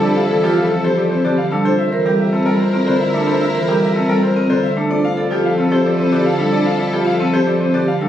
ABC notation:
X:1
M:3/4
L:1/16
Q:1/4=111
K:F
V:1 name="Grand piano"
d f d G f A c d c d f A | c e c G e A B c B c e A | c e c G e A B c B c e A | d f d G f A c d c d f A |
d f d G f A c d c d f A |]
V:2 name="Clarinet"
A8- A3 z | B12- | B8- B3 z | A12- |
A8- A3 z |]
V:3 name="Vibraphone"
G z A F z C G z C G z D | A z B G z C A z C A z D | A z B G z C A z C A z D | z2 A F z C G z C G z D |
z2 A F z C G z C G z D |]
V:4 name="String section"
[EA]8- [EA]3 z | [EB]12- | [EB]8- [EB]3 z | [EA]12- |
[EA]8- [EA]3 z |]
V:5 name="Marimba" clef=bass
z2 E, F, z2 F, z2 D, z G, | z2 E, G, z2 G, z2 D, z A, | z2 E, G, z2 G, z2 D, z A, | z3 F, z2 F, z2 D, z G, |
z3 F, z2 F, z2 D, z G, |]
V:6 name="Bassoon" clef=bass
F,,12 | F,,12- | F,,12 | F,,12- |
F,,12 |]